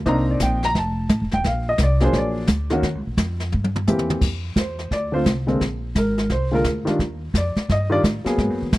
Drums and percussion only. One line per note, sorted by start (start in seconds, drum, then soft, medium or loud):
0.06 brush sweep medium
0.06 kick soft
0.06 snare soft
0.40 kick soft
0.40 snare medium
0.40 hi-hat pedal medium
0.63 snare soft
0.75 brush sweep soft
0.75 kick soft
0.75 snare soft
1.09 kick soft
1.09 snare medium
1.09 hi-hat pedal medium
1.31 snare soft
1.44 brush sweep medium
1.44 kick soft
1.44 snare soft
1.78 kick soft
1.78 snare medium
1.78 hi-hat pedal medium
2.00 snare soft
2.13 brush sweep soft
2.13 kick soft
2.13 snare soft
2.47 kick soft
2.47 snare medium
2.47 hi-hat pedal medium
2.70 snare soft
2.83 brush sweep soft
2.83 kick soft
2.83 snare soft
3.17 kick soft
3.17 snare medium
3.17 hi-hat pedal soft
3.40 snare soft
3.52 high tom soft
3.64 high tom medium
3.76 mid tom medium
3.87 hi-hat pedal medium
3.87 mid tom medium
3.99 mid tom medium
4.10 mid tom loud
4.21 brush sweep medium
4.21 kick medium
4.21 snare soft
4.21 crash medium
4.56 kick soft
4.56 snare medium
4.56 hi-hat pedal medium
4.79 snare soft
4.91 brush sweep soft
4.91 kick soft
4.91 snare soft
5.26 kick soft
5.26 snare medium
5.26 hi-hat pedal soft
5.48 snare soft
5.61 brush sweep soft
5.61 kick soft
5.61 snare soft
5.95 kick soft
5.95 snare medium
5.95 hi-hat pedal medium
6.18 snare soft
6.30 brush sweep medium
6.30 kick soft
6.30 snare soft
6.64 kick soft
6.64 snare medium
6.64 hi-hat pedal soft
6.87 snare soft
6.99 brush sweep soft
6.99 kick soft
6.99 snare soft
7.34 kick soft
7.34 snare medium
7.34 hi-hat pedal medium
7.56 snare soft
7.69 brush sweep medium
7.69 kick soft
7.69 snare soft
8.03 kick soft
8.03 snare medium
8.03 hi-hat pedal medium
8.26 snare soft
8.38 brush sweep medium
8.38 kick soft
8.38 snare soft
8.73 kick soft
8.73 snare medium
8.73 hi-hat pedal medium